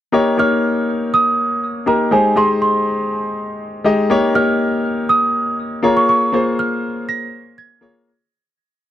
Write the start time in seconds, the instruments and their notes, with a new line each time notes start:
0.12 grand piano A#3 D#4 G4 C#5
0.37 grand piano A#3 D#4 G4 C#5, celesta F6
1.14 celesta D#6
1.86 grand piano A#3 D#4 G4 A#4, celesta A#5
2.11 grand piano G#3 D#4 G4 C5, celesta G#5
2.36 grand piano G#3 D#4 G4 D#5, celesta C6
2.62 celesta C6
3.84 grand piano G#3 D#4 G4 D#5
4.10 grand piano A#3 D#4 G4 C#5
4.34 grand piano A#3 D#4 G4 C#5, celesta F6
5.09 celesta D#6
5.83 grand piano A#3 F4 G#4 C#5, celesta A#5
5.97 celesta C#6
6.09 celesta C#6
6.32 grand piano A#3 F4 G#4 C5
6.59 celesta F6
7.09 celesta A#6
7.58 celesta G#6
7.81 grand piano A#3 F4 G#4 C#5